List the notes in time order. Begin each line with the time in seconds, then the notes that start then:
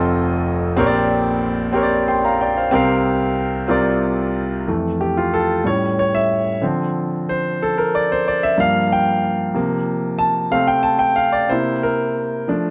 Already playing: F1 F2 C4 F4 A4 D#5
0.77 A#1 A#2 C4 G4 A#4 C#5
0.86 D5
1.73 C4 G4 A#4 C#5
1.83 D5
2.08 G5 C6
2.25 F5 A#5
2.41 D5 G5
2.57 C5 F5
2.71 C2 C3 C4 G4 A#4
2.75 F5
3.68 C2 C3 C4 F4 A#4 D5
4.67 F2 E3 A3
5.01 G4
5.17 F4
5.34 A4
5.64 A2 G3 C#4 C#5
5.99 C#5
6.15 E5
6.62 D3 F3 C4
7.29 C5
7.62 A4
7.78 A#4
7.95 D5
8.12 C5
8.28 D5
8.43 E5
8.58 G2 F3 A#3 F5
8.92 G5
9.54 C3 F3 A#3
10.19 A5
10.51 C3 A3 C4 F5
10.68 G5
10.83 A5
10.99 G5
11.16 F5
11.32 D5
11.49 C3 A#3 E4 C5
11.83 A#4
12.48 F3 A3 D4